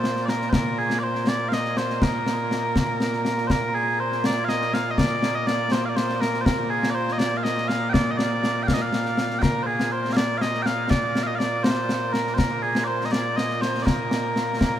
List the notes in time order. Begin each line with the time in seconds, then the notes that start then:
Already playing: A#2 A#3 C5
0.04 snare
0.16 snare
0.26 A#4 D5, snare
0.41 snare
0.49 A#4 C5, concert bass drum, snare
0.79 G#4
0.90 snare
0.99 D5
1.04 C5
1.15 snare
1.27 D5, snare
1.49 F5, snare
1.53 D#5
1.65 snare
1.77 C5, snare
1.90 snare
2.02 A#4, concert bass drum, snare
2.26 snare
2.51 snare
2.76 concert bass drum, snare
3.00 snare
3.13 snare
3.25 snare
3.38 snare
3.47 A#4 C5, concert bass drum, snare
3.75 G#4
4.00 C5
4.12 snare
4.24 D5, snare
4.45 F5, snare
4.49 D#5
4.61 snare
4.73 F5, snare
4.91 D#5
4.98 D5, concert bass drum, snare
5.23 snare
5.35 D#5
5.47 D5, snare
5.72 C5, snare
5.85 D5 F5
5.96 C5, snare
6.09 snare
6.21 A#4, snare
6.34 snare
6.41 C5
6.45 A#4, concert bass drum, snare
6.70 G#4
6.83 snare
6.90 D5
6.95 C5
7.08 snare
7.13 D#5
7.19 D5, snare
7.37 F5
7.43 D#5, snare
7.57 snare
7.68 F5, snare
7.89 D5 G5
7.94 concert bass drum, snare
8.11 D#5
8.18 D5, snare
8.44 snare
8.63 G5
8.67 F5, concert bass drum, snare
8.74 D#5
8.82 F5
8.93 snare
9.05 snare
9.17 snare
9.30 snare
9.39 A#4 G5, concert bass drum, snare
9.63 G#4 C5
9.80 snare
9.92 C5
10.05 snare
10.13 D5 F5, snare
10.38 D#5 F5, snare
10.54 snare
10.62 F5 G5, snare
10.90 D5, concert bass drum, snare
11.15 snare
11.23 D#5 F5
11.35 D5 F5
11.40 snare
11.63 C5, snare
11.89 snare
12.12 A#4, snare
12.26 snare
12.34 C5
12.38 A#4, concert bass drum, snare
12.63 G#4
12.75 snare
12.84 C5 D5
13.01 snare
13.06 D#5
13.12 D5, snare
13.37 D#5, snare
13.50 snare
13.62 C5, snare
13.74 snare
13.83 A#4 D5
13.87 concert bass drum, snare
14.11 snare
14.36 snare
14.61 concert bass drum, snare